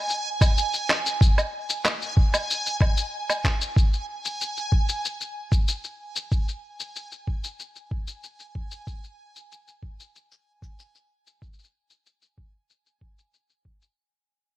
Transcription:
Already playing: synth texture G#5
0.10 shaker
0.41 kick, low woodblock, shaker
0.58 shaker
0.74 shaker
0.90 clap, low woodblock
1.06 shaker
1.21 kick, shaker
1.38 low woodblock, shaker
1.70 shaker
1.85 clap, low woodblock, shaker
2.02 shaker
2.17 kick
2.34 low woodblock, shaker
2.50 shaker
2.66 shaker
2.81 kick, low woodblock
2.97 shaker
3.30 low woodblock, shaker
3.45 kick, clap
3.61 shaker
3.76 kick, shaker
3.93 shaker
4.25 shaker
4.41 shaker
4.57 shaker
4.72 kick
4.89 shaker
5.05 shaker
5.21 shaker
5.52 kick, shaker
5.68 shaker
5.84 shaker
6.16 shaker
6.32 kick, shaker
6.48 shaker
6.80 shaker
6.96 shaker
7.12 shaker
7.27 kick
7.44 shaker
7.60 shaker
7.76 shaker
7.91 kick
8.07 shaker
8.24 shaker
8.40 shaker
8.55 kick
8.71 shaker
8.87 kick, shaker
9.04 shaker
9.36 shaker
9.52 shaker
9.68 shaker
9.83 kick
10.00 shaker
10.15 shaker
10.32 shaker
10.62 kick, shaker
10.79 shaker
10.95 shaker
11.27 shaker
11.42 kick, shaker
11.53 shaker
11.59 shaker
11.64 shaker
11.90 shaker
12.06 shaker
12.22 shaker
12.38 kick
12.70 shaker
12.86 shaker
13.01 kick
13.18 shaker
13.34 shaker
13.50 shaker
13.65 kick
13.82 shaker

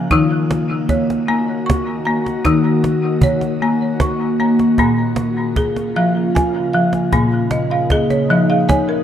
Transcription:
Already playing: ambient pad A#3, marimba F5 G#5
0.11 ambient pad D#3 F#4, marimba D#3 D#4 D#6, cajon bass, cajon slap
0.31 cajon slap
0.51 cajon slap
0.71 cajon slap
0.89 marimba C#5, cajon bass, cajon slap
1.10 cajon slap
1.28 marimba A#3 A#5
1.66 marimba C#6, cajon bass, cajon slap
2.05 marimba A#3 A#5
2.26 cajon slap
2.45 marimba D#3 D#4 D#6, cajon bass, cajon slap
2.84 cajon slap
3.03 cajon slap
3.21 marimba C#5, cajon bass
3.41 cajon slap
3.62 marimba A#3 A#5, cajon slap
3.82 cajon slap
4.00 marimba C#6, cajon bass, cajon slap
4.40 marimba A#3 A#5, cajon slap
4.59 cajon slap
4.78 marimba A#2 A#3 A#5, ambient pad C#3 F4, cajon bass, cajon slap
4.97 cajon slap
5.16 cajon slap
5.36 cajon slap
5.56 marimba G#4, cajon bass, cajon slap
5.76 cajon slap
5.96 marimba F3 F5
6.35 marimba G#5, cajon bass, cajon slap
6.73 marimba F3 F5
6.93 cajon slap
7.11 marimba A#2 A#3, ambient pad D#4, cajon bass, cajon slap
7.31 cajon slap
7.51 marimba D#5, cajon slap
7.70 marimba F5, cajon slap
7.90 marimba G#4 D#5, cajon bass, cajon slap
8.10 marimba C#5, cajon slap
8.30 marimba F3 D#5
8.50 marimba F5
8.69 marimba C#5 G#5, cajon bass, cajon slap
8.89 marimba A#4

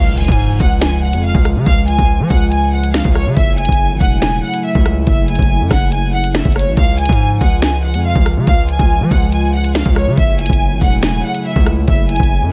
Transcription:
Already playing: 808-style bass C#2, analog synth pad C#3 F3 G#3 F4, violin section F5, impact
0.18 violin section G#5, closed hi-hat
0.25 808-style bass G#2, kick, closed hi-hat
0.32 closed hi-hat
0.60 808-style bass C#2, violin section F#5, kick, closed hi-hat
0.81 violin section G#5, finger snap, snare, closed hi-hat
1.03 violin section F#5
1.13 808-style bass F2, closed hi-hat
1.24 violin section F5
1.35 808-style bass C#2, kick
1.45 cross-stick, closed hi-hat
1.56 808-style bass C#3
1.66 808-style bass C#2, violin section F5, kick, closed hi-hat
1.88 violin section G#5, closed hi-hat
1.98 808-style bass C#2, kick, closed hi-hat
2.20 808-style bass F3
2.30 808-style bass C#2, violin section F#5, kick, closed hi-hat
2.51 violin section G#5, closed hi-hat
2.73 violin section F#5
2.83 closed hi-hat
2.94 violin section F5, finger snap, snare
3.04 808-style bass C#2, kick, closed hi-hat
3.15 violin section C#5, cross-stick
3.26 808-style bass C#3
3.37 808-style bass F#1, analog synth pad F#3 A3 E4, violin section E5, kick, closed hi-hat
3.58 violin section G#5, closed hi-hat
3.65 808-style bass F#1, kick, closed hi-hat
3.72 closed hi-hat
3.90 808-style bass G#1
4.00 808-style bass E1, violin section F#5, kick, closed hi-hat
4.21 violin section G#5, finger snap, snare, closed hi-hat
4.43 violin section F#5
4.54 closed hi-hat
4.64 violin section E5
4.75 808-style bass C#2, kick
4.86 cross-stick, closed hi-hat
5.07 808-style bass F#1, violin section E5, kick, closed hi-hat
5.28 violin section G#5, closed hi-hat
5.35 808-style bass F#1, kick, closed hi-hat
5.42 closed hi-hat
5.60 808-style bass F#2
5.71 808-style bass F#1, violin section F#5, kick, cross-stick, snare, closed hi-hat
5.92 violin section G#5, closed hi-hat
6.13 violin section F#5
6.24 closed hi-hat
6.35 violin section E5, finger snap, snare
6.45 808-style bass F#1, kick, closed hi-hat
6.52 violin section C#5, cross-stick, closed hi-hat
6.59 closed hi-hat
6.66 808-style bass A1
6.77 808-style bass C#2, analog synth pad F3 G#3 F4, violin section F5, kick, closed hi-hat
6.98 violin section G#5, closed hi-hat
7.05 808-style bass G#2, kick, closed hi-hat
7.12 closed hi-hat
7.41 808-style bass C#2, violin section F#5, kick, closed hi-hat
7.62 violin section G#5, finger snap, snare, closed hi-hat
7.83 violin section F#5
7.94 808-style bass F2, closed hi-hat
8.05 violin section F5
8.15 808-style bass C#2, kick
8.26 cross-stick, closed hi-hat
8.37 808-style bass C#3
8.47 808-style bass C#2, violin section F5, kick, closed hi-hat
8.69 violin section G#5, closed hi-hat
8.79 808-style bass C#2, kick, closed hi-hat
9.00 808-style bass F3
9.11 808-style bass C#2, violin section F#5, kick, closed hi-hat
9.32 violin section G#5, closed hi-hat
9.54 violin section F#5
9.64 closed hi-hat
9.75 violin section F5, finger snap, snare
9.85 808-style bass C#2, kick, closed hi-hat
9.96 violin section C#5, cross-stick
10.07 808-style bass C#3
10.17 808-style bass F#1, analog synth pad C#3 F#3 A3 E4, violin section E5, kick, closed hi-hat
10.39 violin section G#5, closed hi-hat
10.46 808-style bass F#1, kick, closed hi-hat
10.53 closed hi-hat
10.71 808-style bass G#1
10.81 808-style bass E1, violin section F#5, kick, closed hi-hat
11.02 violin section G#5, finger snap, snare, closed hi-hat
11.24 violin section F#5
11.35 closed hi-hat
11.45 violin section E5
11.56 808-style bass C#2, kick
11.66 cross-stick, closed hi-hat
11.88 808-style bass F#1, violin section E5, kick, closed hi-hat
12.09 violin section G#5, closed hi-hat
12.16 808-style bass F#1, kick, closed hi-hat
12.23 closed hi-hat
12.41 808-style bass F#2

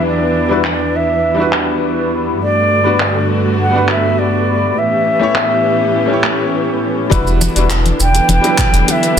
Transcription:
Already playing: string section E2 E3 B3 D4, grand piano F#3 G3 D4 E4 B4
0.07 flute D5
0.49 grand piano G3 D4 E4 F#4 B4
0.64 flute D5, clap
0.96 flute E5
1.34 grand piano G3 D4 E4
1.40 grand piano F#4 B4
1.53 clap
2.40 string section G2 D3 A3 B3 F#4, flute D5
2.83 grand piano G3 B3 D4 F#4 B4
3.00 clap
3.60 flute F#5
3.70 grand piano G3 B3 D4
3.75 grand piano F#4 B4
3.88 flute E5, clap
4.18 flute D5
4.75 string section A2 E3 B3 C#4 G4, flute E5
5.19 grand piano A3 C#4 E4 G4 C#5
5.35 clap
6.06 grand piano A3 C#4 E4
6.12 grand piano G4 C#5
6.24 clap
7.10 sub bass E1, string section D3 E3 B3 D4 E4, grand piano G3 D4 E4 F#4 B4, kick, closed hi-hat, shaker
7.27 shaker
7.41 high bongo, high conga, shaker
7.55 sub bass E1, grand piano G3 D4 E4 F#4 B4, closed hi-hat, shaker
7.70 clap, closed hi-hat, high bongo, shaker
7.86 closed hi-hat, high conga, shaker
8.00 sub bass E1, flute G5, shaker
8.15 closed hi-hat, high bongo, shaker
8.28 sub bass E1, flute G5, closed hi-hat, high conga, shaker
8.41 grand piano G3 D4 E4, closed hi-hat, high bongo, shaker
8.46 grand piano F#3 B4
8.58 kick, clap, low conga, shaker
8.73 sub bass E1, closed hi-hat, shaker
8.88 flute E5, closed hi-hat, high bongo, high conga, shaker
9.03 closed hi-hat, shaker

